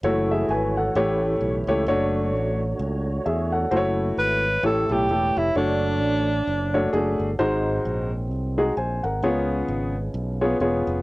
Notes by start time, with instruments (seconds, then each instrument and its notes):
0.03 fingered electric bass F#1, tonewheel organ E3 A3 F#4 C#5, french horn section E3 F#3 A3 C#5, upright piano A3 E4 F#4 C#5
0.31 upright piano G#4 E5
0.49 fingered electric bass G#1, upright piano B4 G#5
0.77 upright piano A4 F#5
0.95 fingered electric bass A1, upright piano A2 A3 E4 G4 C#5, french horn section E3 G3, tonewheel organ E3 A3 G4
1.41 fingered electric bass B1
1.67 fingered electric bass C#2, upright piano A3 E4 G4 C#5
1.86 fingered electric bass F#1, french horn section F#3 D4, upright piano A3 D4 F#4 C#5, tonewheel organ D4 F#4
2.34 fingered electric bass A1
2.79 fingered electric bass C#2
3.25 fingered electric bass E2, upright piano G#4 E5
3.52 upright piano A4 F#5
3.71 fingered electric bass F#1, french horn section E3 F#3 A3 C#5, upright piano A3 E4 F#4 C5
3.77 upright piano C#5
4.17 fingered electric bass G#1, alto saxophone B4
4.63 fingered electric bass A1, upright piano A2 A3 E4 G4 C#5, french horn section G3 A3, alto saxophone A4
4.89 fingered electric bass B1, upright piano A3 E4 G4 A4, alto saxophone G4
5.09 fingered electric bass E1, upright piano A3 E4 G4 A4
5.37 fingered electric bass F1, alto saxophone E4
5.55 fingered electric bass F#1, french horn section D3 F#3, upright piano A3 D4 F#4 C#5, alto saxophone D4
6.01 fingered electric bass A1
6.47 fingered electric bass F#1
6.74 upright piano A3 D4 F#4 C#5
6.93 fingered electric bass F#1, upright piano A3 D4 F#4 G#4
7.19 fingered electric bass G1
7.38 fingered electric bass G#1, upright piano G#2 G#3 D#4 F#4 C5, french horn section D#3 G#3 C4
7.85 fingered electric bass A#1
8.30 fingered electric bass C2
8.58 upright piano G#3 D#4 F#4 G#4
8.77 fingered electric bass A#1, upright piano C5 G#5
9.03 fingered electric bass G#1, upright piano A#4 F#5
9.22 fingered electric bass C#2, upright piano C#3 B3 F4 G#4 C#5, french horn section F3 B3 C#4
9.68 fingered electric bass G#1
10.14 fingered electric bass B1
10.41 upright piano B3 F4 G#4 C#5
10.60 fingered electric bass E1, upright piano B3 F4 G#4 C#5
10.87 fingered electric bass F1